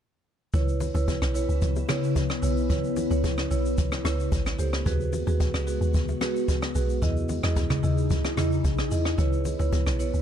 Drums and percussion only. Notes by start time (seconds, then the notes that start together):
0.54 kick, low conga, shaker
0.68 shaker
0.80 open hi-hat, low bongo, low conga, shaker
0.95 low bongo, shaker
1.08 kick, hi-hat pedal, high bongo, shaker
1.22 cross-stick, shaker
1.35 open hi-hat, shaker
1.49 shaker
1.61 kick, hi-hat pedal, low conga, shaker
1.76 high bongo, shaker
1.89 cross-stick, mid tom, open hi-hat, high bongo, low bongo, shaker
2.03 shaker
2.16 kick, hi-hat pedal, high bongo, shaker
2.29 cross-stick, shaker
2.43 open hi-hat, shaker
2.57 shaker
2.70 kick, hi-hat pedal, low conga, shaker
2.84 shaker
2.96 open hi-hat, low bongo, low conga, shaker
3.11 low bongo, shaker
3.24 kick, hi-hat pedal, high bongo, shaker
3.38 cross-stick, shaker
3.51 open hi-hat, shaker
3.65 shaker
3.78 kick, hi-hat pedal, low conga, shaker
3.92 cross-stick, high bongo, shaker
4.05 cross-stick, open hi-hat, high bongo, low bongo, shaker
4.20 shaker
4.32 kick, hi-hat pedal, high bongo, shaker
4.46 cross-stick, shaker
4.59 open hi-hat, shaker
4.73 cross-stick, shaker
4.86 kick, hi-hat pedal, low conga, shaker
5.01 shaker
5.13 open hi-hat, low bongo, low conga, shaker
5.27 low bongo, shaker
5.40 kick, hi-hat pedal, high bongo, shaker
5.54 cross-stick, shaker
5.67 open hi-hat, shaker
5.82 shaker
5.94 kick, hi-hat pedal, low conga, shaker
6.08 high bongo, shaker
6.21 cross-stick, open hi-hat, high bongo, low bongo, shaker
6.36 shaker
6.48 kick, hi-hat pedal, high bongo, shaker
6.62 cross-stick, shaker
6.75 open hi-hat, shaker
6.89 shaker
7.02 kick, hi-hat pedal, low conga, shaker
7.17 shaker
7.29 open hi-hat, low bongo, low conga, shaker
7.43 cross-stick, low bongo, shaker
7.56 kick, hi-hat pedal, high bongo, shaker
7.70 cross-stick, mid tom, shaker
7.83 open hi-hat, shaker
7.98 shaker
8.10 kick, hi-hat pedal, low conga, shaker
8.24 cross-stick, high bongo, shaker
8.37 cross-stick, mid tom, open hi-hat, high bongo, low bongo, shaker
8.52 shaker
8.64 kick, hi-hat pedal, high bongo, shaker
8.78 cross-stick, shaker
8.91 open hi-hat, shaker
9.05 cross-stick, shaker
9.18 kick, hi-hat pedal, low conga, shaker
9.33 shaker
9.45 open hi-hat, low bongo, low conga, shaker
9.59 low bongo, shaker
9.72 kick, hi-hat pedal, high bongo, shaker
9.87 cross-stick, shaker
10.00 open hi-hat, shaker
10.14 shaker